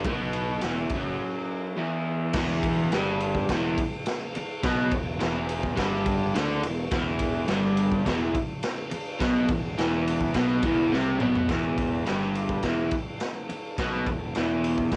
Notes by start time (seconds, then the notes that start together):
0.04 B1 B2 B3, kick, ride
0.33 ride
0.61 E1 E2 E3, snare, ride
0.89 F#1, kick, ride
0.94 F#2 F#3
1.77 E2 E3
2.33 E1 E2 E3, kick, snare, crash
2.63 kick, ride
2.92 G1 G2 G3, snare, ride
3.20 ride
3.35 kick
3.49 E1 E2 E3, kick, snare, ride
3.78 kick, ride
4.06 snare, ride
4.35 muted overdriven electric guitar stroke, muted fingered electric bass stroke, ride
4.63 B1 B2 B3, kick, snare, ride
4.91 E1 E2, kick, ride
5.20 E1 E2 E3, snare, ride
5.49 ride
5.63 kick
5.76 G1 G2 G3, kick, snare, ride
6.06 kick, ride
6.35 D2 D3 D4, snare, ride
6.63 E1 E2, ride
6.91 E1 E2 E3, kick, snare, ride
7.19 kick, ride
7.48 G1 G2 G3, snare, ride
7.77 ride
7.92 kick
8.05 E1 E2 E3, kick, snare, ride
8.35 kick, ride
8.63 snare, ride
8.91 muted overdriven electric guitar stroke, muted fingered electric bass stroke, ride
9.20 B1 B2 B3, kick, snare, ride
9.49 E1 E2, kick, ride
9.78 E1 E2 E3, snare, ride
10.08 ride
10.21 kick
10.34 B1 B2 B3, kick, snare, ride
10.63 E1 E2 E3, kick, ride
10.92 C2 C3 C4, snare
11.20 B1 B2 B3, mid tom
11.35 floor tom
11.48 E1 E2 E3, kick, snare, ride
11.78 kick, ride
12.06 G1 G2 G3, snare, ride
12.35 ride
12.49 kick
12.62 E1 E2 E3, kick, snare, ride
12.91 kick, ride
13.20 snare, ride
13.49 muted overdriven electric guitar stroke, muted fingered electric bass stroke, ride
13.78 B1 B2 B3, kick, snare, ride
14.07 E1 E2, kick, ride
14.35 E1 E2 E3, snare, ride
14.64 ride
14.78 kick
14.92 G1 G2, kick, snare, ride